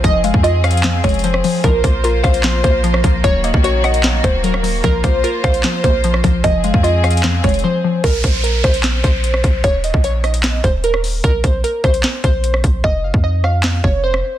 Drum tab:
HH |x-----------x-----------x-----------x---x---x---x-----------x--x--x--x--x-----------o-----------|x-----------x-----------x-----------x-----x-----x-----------x-----------x-----------x-----------|x-----------x-----------x-----------x-----x-----x-----------x-----------x-----------o-----------|x-----------x-----------x-----------x-----x-----x-----------x-----------x-----------x-----------|
CP |------------------------------------------------x-----------------------------------------------|------------------------------------------------x-----------------------------------------------|------------------------------------------------x-----------------------------------------------|------------------------------------------------x-----------------------------------------------|
SD |------------------------------------r-----------o-----------------------------r-----------------|------------------------------------r-----------o-----------------------------r-----------------|------------------------------------r-----------o-----------------------------r-----------------|------------------------------------r-----------o-----------------------------r-----------------|
BD |o-----------------o-----------------------------------------o-----------------------------------|o-----------o-----------------------o-----------------------o-----------------------o-----------|o-----------------o-----------------------------------------o-----------------------------------|o-----------o-----------------------o-----------------------o-----------------------o-----------|

HH |x-----------x-----------x-----------x---x---x---x-----------x--x--x--x--------------------------|x-----------x-----------x-----------x-----x-----x-----------x-----------x-----------x-----------|x-----------x-----------x-----------x-----x-----x-----------x-----------x-----------o-----------|x-----------x-----------x-----------x-----x-----x-----------x-----------x-----------x-----------|
CP |------------------------------------------------x-----------------------------------------------|------------------------------------------------x-----------------------------------------------|------------------------------------------------x-----------------------------------------------|------------------------------------------------x-----------------------------------------------|
SD |------------------------------------r-----------o-----------------------------------------------|------------------------------------r-----------o-----------------------------r-----------------|------------------------------------r-----------o-----------------------------r-----------------|------------------------------------r-----------o-----------------------------r-----------------|
BD |o-----------------o-----------------------------------------o-----------------------------------|o-----------o-----------------------o-----------------------o-----------------------o-----------|o-----------------o-----------------------------------------o-----------------------------------|o-----------o-----------------------o-----------------------o-----------------------o-----------|

HH |------------------------------------------------------------------------------------------------|
CP |------------------------------------------------x-----------------------------------------------|
SD |------------------------------------r-----------o-----------------------------r-----------------|
BD |o-----------------o-----------------------------------------o-----------------------------------|